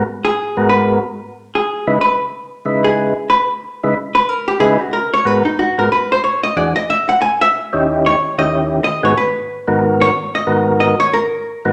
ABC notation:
X:1
M:4/4
L:1/8
Q:"Swing" 1/4=184
K:G#m
V:1 name="Hollow-body jazz guitar"
z G3 B z3 | z G3 B z3 | z G3 B z3 | z B A =G ^G F A c |
B D F A B ^B c d | =d ^d e f g e z2 | z c2 d3 d c | B3 z2 c2 d- |
d2 d c A3 z |]
V:2 name="Tonewheel organ"
z3 [G,,G,B,FA]3 z2 | z3 [C,G,DEB] z4 | [C,G,DEB]3 z4 [C,G,DEB] | z4 [C,G,DEB] z3 |
[G,,G,B,FA] z2 [G,,G,B,FA] z4 | [E,,E,=DFG] z6 [^D,,C^DE=G]- | [D,,CDE=G]2 z [D,,D,CEG]3 z [^G,,D,B,F^G] | z3 [G,,D,B,FA]3 z2 |
[G,,D,B,FA]3 z4 [G,,D,B,FA] |]